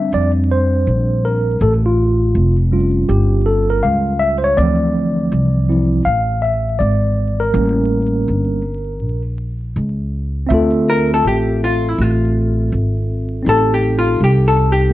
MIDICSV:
0, 0, Header, 1, 4, 480
1, 0, Start_track
1, 0, Key_signature, -1, "minor"
1, 0, Tempo, 740741
1, 1045, Time_signature, 4, 2, 24, 8
1, 9675, End_track
2, 0, Start_track
2, 0, Title_t, "Hollow-body jazz guitar"
2, 0, Program_c, 0, 26
2, 7061, Note_on_c, 0, 70, 98
2, 7212, Note_off_c, 0, 70, 0
2, 7217, Note_on_c, 0, 69, 100
2, 7289, Note_off_c, 0, 69, 0
2, 7305, Note_on_c, 0, 67, 93
2, 7519, Note_off_c, 0, 67, 0
2, 7543, Note_on_c, 0, 65, 87
2, 7702, Note_off_c, 0, 65, 0
2, 7702, Note_on_c, 0, 64, 88
2, 7785, Note_off_c, 0, 64, 0
2, 7785, Note_on_c, 0, 65, 77
2, 8255, Note_off_c, 0, 65, 0
2, 8741, Note_on_c, 0, 69, 104
2, 8898, Note_off_c, 0, 69, 0
2, 8903, Note_on_c, 0, 67, 93
2, 9059, Note_off_c, 0, 67, 0
2, 9063, Note_on_c, 0, 65, 85
2, 9203, Note_off_c, 0, 65, 0
2, 9226, Note_on_c, 0, 67, 87
2, 9380, Note_off_c, 0, 67, 0
2, 9381, Note_on_c, 0, 69, 88
2, 9538, Note_off_c, 0, 69, 0
2, 9540, Note_on_c, 0, 67, 99
2, 9675, Note_off_c, 0, 67, 0
2, 9675, End_track
3, 0, Start_track
3, 0, Title_t, "Tine electric piano"
3, 0, Program_c, 1, 4
3, 0, Note_on_c, 1, 55, 53
3, 0, Note_on_c, 1, 60, 49
3, 0, Note_on_c, 1, 62, 56
3, 0, Note_on_c, 1, 76, 92
3, 72, Note_off_c, 1, 76, 0
3, 91, Note_on_c, 1, 74, 98
3, 198, Note_off_c, 1, 74, 0
3, 333, Note_on_c, 1, 72, 91
3, 810, Note_on_c, 1, 70, 83
3, 823, Note_off_c, 1, 72, 0
3, 1018, Note_off_c, 1, 55, 0
3, 1020, Note_off_c, 1, 60, 0
3, 1022, Note_off_c, 1, 62, 0
3, 1031, Note_off_c, 1, 70, 0
3, 1051, Note_on_c, 1, 69, 92
3, 1119, Note_off_c, 1, 69, 0
3, 1205, Note_on_c, 1, 65, 74
3, 1656, Note_off_c, 1, 65, 0
3, 1762, Note_on_c, 1, 55, 53
3, 1766, Note_on_c, 1, 61, 49
3, 1769, Note_on_c, 1, 65, 59
3, 2001, Note_on_c, 1, 67, 83
3, 2242, Note_on_c, 1, 69, 87
3, 2250, Note_off_c, 1, 67, 0
3, 2388, Note_off_c, 1, 69, 0
3, 2399, Note_on_c, 1, 70, 92
3, 2480, Note_on_c, 1, 77, 89
3, 2487, Note_off_c, 1, 70, 0
3, 2718, Note_on_c, 1, 76, 105
3, 2730, Note_off_c, 1, 77, 0
3, 2829, Note_off_c, 1, 76, 0
3, 2839, Note_on_c, 1, 72, 73
3, 2877, Note_on_c, 1, 73, 104
3, 2879, Note_off_c, 1, 72, 0
3, 2938, Note_off_c, 1, 55, 0
3, 2940, Note_off_c, 1, 61, 0
3, 2941, Note_off_c, 1, 65, 0
3, 2958, Note_off_c, 1, 73, 0
3, 2960, Note_on_c, 1, 53, 54
3, 2962, Note_on_c, 1, 74, 102
3, 2964, Note_on_c, 1, 60, 52
3, 2968, Note_on_c, 1, 52, 61
3, 3677, Note_off_c, 1, 53, 0
3, 3679, Note_off_c, 1, 60, 0
3, 3685, Note_on_c, 1, 53, 49
3, 3687, Note_on_c, 1, 60, 44
3, 3690, Note_on_c, 1, 64, 53
3, 3898, Note_off_c, 1, 74, 0
3, 3901, Note_off_c, 1, 53, 0
3, 3902, Note_off_c, 1, 60, 0
3, 3904, Note_off_c, 1, 64, 0
3, 3921, Note_on_c, 1, 77, 102
3, 4160, Note_on_c, 1, 76, 83
3, 4170, Note_off_c, 1, 77, 0
3, 4400, Note_on_c, 1, 74, 87
3, 4410, Note_off_c, 1, 76, 0
3, 4795, Note_on_c, 1, 70, 84
3, 4809, Note_off_c, 1, 74, 0
3, 4861, Note_off_c, 1, 52, 0
3, 4881, Note_on_c, 1, 55, 55
3, 4882, Note_on_c, 1, 58, 48
3, 4888, Note_on_c, 1, 61, 62
3, 5577, Note_off_c, 1, 55, 0
3, 5578, Note_off_c, 1, 58, 0
3, 5581, Note_off_c, 1, 61, 0
3, 5971, Note_off_c, 1, 70, 0
3, 6782, Note_on_c, 1, 60, 68
3, 6797, Note_on_c, 1, 76, 73
3, 6815, Note_on_c, 1, 65, 70
3, 6830, Note_on_c, 1, 69, 78
3, 8688, Note_off_c, 1, 60, 0
3, 8695, Note_off_c, 1, 76, 0
3, 8700, Note_on_c, 1, 60, 64
3, 8704, Note_off_c, 1, 65, 0
3, 8712, Note_off_c, 1, 69, 0
3, 8715, Note_on_c, 1, 63, 54
3, 8734, Note_on_c, 1, 67, 55
3, 8749, Note_on_c, 1, 69, 71
3, 9653, Note_off_c, 1, 60, 0
3, 9661, Note_off_c, 1, 63, 0
3, 9670, Note_off_c, 1, 67, 0
3, 9675, Note_off_c, 1, 69, 0
3, 9675, End_track
4, 0, Start_track
4, 0, Title_t, "Upright bass"
4, 0, Program_c, 2, 32
4, 81, Note_on_c, 2, 41, 98
4, 539, Note_off_c, 2, 41, 0
4, 563, Note_on_c, 2, 34, 88
4, 1020, Note_off_c, 2, 34, 0
4, 1042, Note_on_c, 2, 33, 109
4, 1500, Note_off_c, 2, 33, 0
4, 1522, Note_on_c, 2, 29, 93
4, 1979, Note_off_c, 2, 29, 0
4, 2003, Note_on_c, 2, 31, 96
4, 2460, Note_off_c, 2, 31, 0
4, 2483, Note_on_c, 2, 37, 87
4, 2940, Note_off_c, 2, 37, 0
4, 2966, Note_on_c, 2, 38, 114
4, 3422, Note_off_c, 2, 38, 0
4, 3445, Note_on_c, 2, 36, 96
4, 3901, Note_off_c, 2, 36, 0
4, 3925, Note_on_c, 2, 33, 84
4, 4381, Note_off_c, 2, 33, 0
4, 4406, Note_on_c, 2, 32, 87
4, 4862, Note_off_c, 2, 32, 0
4, 4884, Note_on_c, 2, 33, 106
4, 5341, Note_off_c, 2, 33, 0
4, 5364, Note_on_c, 2, 31, 82
4, 5843, Note_off_c, 2, 31, 0
4, 5843, Note_on_c, 2, 34, 96
4, 6300, Note_off_c, 2, 34, 0
4, 6324, Note_on_c, 2, 37, 86
4, 6780, Note_off_c, 2, 37, 0
4, 6805, Note_on_c, 2, 38, 109
4, 7261, Note_off_c, 2, 38, 0
4, 7286, Note_on_c, 2, 33, 84
4, 7742, Note_off_c, 2, 33, 0
4, 7765, Note_on_c, 2, 33, 97
4, 8221, Note_off_c, 2, 33, 0
4, 8244, Note_on_c, 2, 32, 83
4, 8700, Note_off_c, 2, 32, 0
4, 8723, Note_on_c, 2, 33, 101
4, 9180, Note_off_c, 2, 33, 0
4, 9203, Note_on_c, 2, 36, 91
4, 9660, Note_off_c, 2, 36, 0
4, 9675, End_track
0, 0, End_of_file